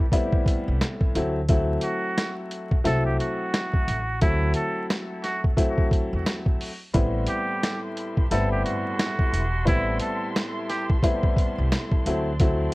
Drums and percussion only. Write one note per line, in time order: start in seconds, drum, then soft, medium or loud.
0.12 kick loud
0.12 closed hi-hat loud
0.32 kick loud
0.46 kick medium
0.46 closed hi-hat medium
0.81 snare loud
0.81 closed hi-hat loud
1.01 kick medium
1.15 closed hi-hat medium
1.49 kick loud
1.49 closed hi-hat medium
1.81 closed hi-hat medium
2.18 snare loud
2.18 closed hi-hat medium
2.51 closed hi-hat medium
2.72 kick medium
2.85 snare soft
2.85 closed hi-hat loud
3.20 closed hi-hat medium
3.54 snare loud
3.54 closed hi-hat loud
3.73 kick medium
3.88 closed hi-hat medium
4.21 kick loud
4.21 closed hi-hat loud
4.54 closed hi-hat medium
4.90 snare loud
4.90 closed hi-hat medium
5.24 snare soft
5.24 closed hi-hat medium
5.44 kick medium
5.57 kick loud
5.57 closed hi-hat loud
5.78 kick loud
5.91 kick medium
5.91 closed hi-hat medium
6.27 snare loud
6.27 closed hi-hat loud
6.46 kick medium
6.61 open hi-hat medium
6.94 kick loud
6.94 closed hi-hat medium
7.27 closed hi-hat medium
7.63 snare loud
7.63 closed hi-hat medium
7.97 closed hi-hat medium
8.17 kick loud
8.31 snare soft
8.31 closed hi-hat loud
8.66 closed hi-hat medium
8.99 snare loud
8.99 closed hi-hat loud
9.19 kick medium
9.34 closed hi-hat medium
9.67 kick loud
9.67 closed hi-hat loud
10.00 closed hi-hat medium
10.36 snare loud
10.36 closed hi-hat medium
10.70 snare soft
10.70 closed hi-hat medium
10.90 kick loud
11.03 kick loud
11.03 closed hi-hat loud
11.23 kick loud
11.37 kick loud
11.37 closed hi-hat medium
11.72 snare loud
11.72 closed hi-hat loud
11.92 kick medium
12.06 closed hi-hat medium
12.40 kick loud
12.40 closed hi-hat loud